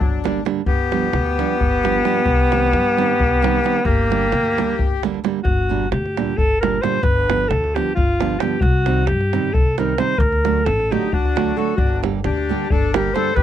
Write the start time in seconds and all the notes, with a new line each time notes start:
Already playing: F#3 D4
0.01 G1, davul low
0.24 D3 G3 A#3 D4, davul high
0.45 D3 G3 A#3 D4, davul high
0.66 G1 B3 G4, davul low
0.91 F3 G3 B3 D4, davul high
1.13 D2, davul high
1.26 davul high
1.38 F3 G3 B3 D4, davul high
1.60 G1, davul low
1.83 F3 G3 B3 D4, davul high
2.05 F3 G3 B3 D4, davul high
2.25 C2, davul low
2.51 D#3 G3 C4 D#4, davul high
2.73 G2, davul high
2.86 davul high
2.97 D#3 G3 C4 D#4, davul high
3.19 C2, davul low
3.42 D#3 G3 C4 D#4, davul high
3.63 D#3 G3 C4 D#4, davul high
3.85 G1 A#3 G4, davul low
4.10 D3 G3 A#3 D4, davul high
4.22 davul high
4.32 D2, davul high
4.46 davul high
4.57 D3 G3 A#3 D4, davul high
4.79 G1, davul low
5.03 D3 G3 A#3 D4, davul high
5.14 davul high
5.24 D3 G3 A#3 D4, davul high
5.43 G1 F#4, davul low
5.69 A#2 D3 G3 A#3 D4
5.91 D2 G4, davul high
6.06 davul high
6.17 A#2 D3 G3 A#3 D4, davul high
6.37 G1 A4, davul low
6.60 A#2 D3 G3 A#3 D4 A#4, davul high
6.81 A#2 D3 G3 A#3 D4 C5, davul high
7.03 G1 B4, davul low
7.29 D3 F3 G3 B3 D4, davul high
7.49 D2 A4, davul high
7.64 davul high
7.75 D3 F3 G3 B3 D4 G4, davul high
7.95 G1 F4, davul low
8.20 D3 F3 G3 B3 D4, davul high
8.39 D3 F3 G3 B3 D4 G4, davul high
8.61 C2 F#4, davul low
8.86 C3 D#3 G3 C4 D#4, davul high
9.06 G2 G4, davul high
9.21 davul high
9.33 C3 D#3 G3 C4 D#4, davul high
9.53 C2 A4, davul low
9.78 C3 D#3 G3 C4 D#4 A#4, davul high
9.98 C3 D#3 G3 C4 D#4 C5, davul high
10.18 D2 A#4, davul low
10.33 davul high
10.44 D3 F#3 A3 D4 F#4, davul high
10.65 A1 A4, davul high
10.80 davul high
10.90 D3 F#3 A3 D4 D#4 F#4 G4, davul high
11.03 davul high
11.12 D2 D4 F#4, davul low
11.25 davul high
11.36 D3 F#3 A3 D4 F#4, davul high
11.56 D3 F#3 A3 D4 F#4 A4
11.68 davul high
11.77 G1 D4 F#4, davul low
12.03 D3 G3 A#3 D4 G4, davul high
12.24 D2 D4 G4, davul high
12.37 davul high
12.49 D3 G3 A#3 D4 G4
12.70 G1 D4 A4, davul low
12.93 D3 G3 A#3 D4 G4 A#4, davul high
13.14 D3 G3 A#3 D4 G4 A4 C5, davul high
13.35 G1 G4 B4, davul low